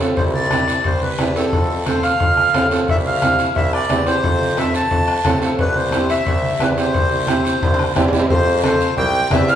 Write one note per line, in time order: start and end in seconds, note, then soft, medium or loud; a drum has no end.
0.00 0.10 A2 medium
0.00 0.17 C4 medium
0.00 0.18 F4 medium
0.00 0.18 A4 medium
0.00 high timbale medium
0.00 short guiro medium
0.16 0.71 C2 medium
0.16 0.24 C5 medium
0.16 bombo low medium
0.16 high conga soft
0.16 high timbale medium
0.16 long guiro medium
0.34 0.87 D5 medium
0.34 high conga medium
0.51 0.75 C4 medium
0.51 0.75 E4 medium
0.51 0.75 G4 medium
0.51 bombo rim medium
0.51 high conga medium
0.51 high timbale medium
0.51 short guiro medium
0.68 high timbale medium
0.68 short guiro medium
0.84 1.12 C2 medium
0.84 1.03 C5 medium
0.84 bombo low medium
0.84 high conga soft
0.84 high timbale medium
0.84 long guiro medium
1.01 1.37 B4 medium
1.01 high conga medium
1.19 1.46 E2 medium
1.19 1.25 C4 medium
1.19 1.25 E4 medium
1.19 1.25 G4 medium
1.19 bombo rim medium
1.19 high conga medium
1.19 high timbale medium
1.19 short guiro medium
1.36 1.53 C4 medium
1.36 1.53 E4 medium
1.36 1.54 G4 medium
1.36 1.83 A4 medium
1.36 high timbale medium
1.36 short guiro medium
1.52 1.85 F2 medium
1.52 bombo low medium
1.52 high conga soft
1.52 high timbale medium
1.52 long guiro medium
1.86 2.10 C4 medium
1.86 2.11 F4 medium
1.86 2.11 A4 medium
1.86 2.04 C5 medium
1.86 bombo rim medium
1.86 high conga medium
1.86 high timbale medium
1.86 short guiro medium
2.03 2.67 F5 medium
2.03 high timbale medium
2.03 short guiro medium
2.20 2.48 F2 medium
2.20 bombo low medium
2.20 high conga soft
2.20 high timbale medium
2.20 long guiro medium
2.37 bombo rim medium
2.37 high conga medium
2.53 2.81 A2 medium
2.53 2.60 C4 medium
2.53 2.60 F4 medium
2.53 2.60 A4 medium
2.53 bombo rim medium
2.53 high conga medium
2.53 high timbale medium
2.53 low timbale medium
2.53 short guiro medium
2.71 2.88 C4 medium
2.71 2.88 F4 medium
2.71 2.89 A4 medium
2.71 high timbale medium
2.71 short guiro medium
2.88 3.43 C2 medium
2.88 2.97 E5 medium
2.88 bombo low medium
2.88 high conga soft
2.88 high timbale medium
2.88 long guiro medium
3.05 3.53 F5 medium
3.05 high conga medium
3.22 3.46 C4 medium
3.22 3.46 E4 medium
3.22 3.46 G4 medium
3.22 bombo rim medium
3.22 high conga medium
3.22 high timbale medium
3.22 short guiro medium
3.39 high timbale medium
3.39 short guiro medium
3.55 3.83 C2 medium
3.55 3.72 E5 medium
3.55 bombo low medium
3.55 high conga soft
3.55 high timbale medium
3.55 long guiro medium
3.73 4.05 D5 medium
3.73 bombo rim medium
3.89 4.17 E2 medium
3.89 3.96 C4 medium
3.89 3.96 E4 medium
3.89 3.96 G4 medium
3.89 bombo rim medium
3.89 high conga medium
3.89 high timbale medium
3.89 low timbale medium
3.89 short guiro medium
4.06 4.23 C4 medium
4.06 4.24 E4 medium
4.06 4.24 G4 medium
4.06 4.59 C5 medium
4.06 high timbale medium
4.06 short guiro medium
4.23 4.78 F2 medium
4.23 bombo low medium
4.23 high conga soft
4.23 high timbale medium
4.23 long guiro medium
4.41 high conga medium
4.57 4.81 C4 medium
4.57 4.81 F4 medium
4.57 4.81 A4 medium
4.57 4.74 E5 medium
4.57 bombo rim medium
4.57 high conga medium
4.57 high timbale medium
4.57 short guiro medium
4.74 5.39 A5 medium
4.74 high timbale medium
4.74 short guiro medium
4.91 5.18 F2 medium
4.91 bombo low medium
4.91 high conga soft
4.91 high timbale medium
4.91 long guiro medium
5.08 bombo rim medium
5.24 5.52 A2 medium
5.24 5.31 C4 medium
5.24 5.31 F4 medium
5.24 5.32 A4 medium
5.24 bombo low medium
5.24 bombo rim medium
5.24 high conga medium
5.24 high timbale medium
5.24 low timbale medium
5.24 short guiro medium
5.41 5.59 C4 medium
5.41 5.59 F4 medium
5.41 5.59 A4 medium
5.41 high timbale medium
5.41 short guiro medium
5.59 6.13 C2 medium
5.59 5.77 B4 medium
5.59 bombo low medium
5.59 high conga soft
5.59 high timbale medium
5.59 long guiro medium
5.76 6.11 C5 medium
5.76 high conga medium
5.91 6.17 C4 medium
5.91 6.17 E4 medium
5.91 6.17 G4 medium
5.91 bombo rim medium
5.91 high conga medium
5.91 high timbale medium
5.91 short guiro medium
6.10 6.62 E5 medium
6.10 high timbale medium
6.10 short guiro medium
6.26 6.54 C2 medium
6.26 bombo low medium
6.26 high conga soft
6.26 high timbale medium
6.26 long guiro medium
6.42 high conga medium
6.60 6.88 E2 medium
6.60 6.66 C4 medium
6.60 6.67 E4 medium
6.60 6.67 G4 medium
6.60 6.68 B4 medium
6.60 bombo rim medium
6.60 high conga medium
6.60 high timbale medium
6.60 short guiro medium
6.77 6.94 C4 medium
6.77 6.94 E4 medium
6.77 6.95 G4 medium
6.77 7.92 C5 medium
6.77 high timbale medium
6.77 short guiro medium
6.94 7.27 C2 medium
6.94 bombo low medium
6.94 high timbale medium
6.94 long guiro medium
7.10 high conga medium
7.27 7.52 C4 medium
7.27 7.52 E4 medium
7.27 7.52 G4 medium
7.27 bombo rim medium
7.27 high conga medium
7.27 high timbale medium
7.27 short guiro medium
7.45 high timbale medium
7.45 short guiro medium
7.61 7.90 C2 medium
7.61 bombo low medium
7.61 high conga soft
7.61 high timbale medium
7.61 long guiro medium
7.74 high timbale medium
7.79 bombo rim medium
7.79 high conga medium
7.95 8.23 E2 medium
7.95 8.02 C4 medium
7.95 8.02 E4 medium
7.95 8.02 G4 medium
7.95 bombo low medium
7.95 bombo rim medium
7.95 high conga medium
7.95 low timbale medium
7.95 short guiro medium
8.08 8.29 C4 medium
8.08 8.29 E4 medium
8.08 low timbale medium
8.12 8.30 G4 medium
8.12 low conga medium
8.12 short guiro medium
8.19 low timbale medium
8.30 8.84 F2 medium
8.30 8.61 C5 medium
8.30 bombo low medium
8.30 cowbell loud
8.30 high conga soft
8.30 long guiro medium
8.63 8.87 C4 medium
8.63 8.87 F4 medium
8.63 8.87 A4 medium
8.63 8.95 C5 medium
8.63 bombo rim medium
8.63 cowbell medium
8.63 high conga medium
8.63 short guiro medium
8.80 short guiro medium
8.97 9.24 C2 loud
8.97 9.32 G5 loud
8.97 cowbell medium
8.97 high conga soft
8.97 low conga medium
8.97 long guiro medium
9.30 9.55 E2 loud
9.30 9.55 C4 medium
9.30 9.55 E4 medium
9.30 9.55 G4 medium
9.30 9.49 E5 medium
9.30 bombo low medium
9.30 bombo rim medium
9.30 cowbell medium
9.30 high conga medium
9.30 low timbale medium
9.30 short guiro medium
9.48 9.55 F5 loud
9.48 short guiro medium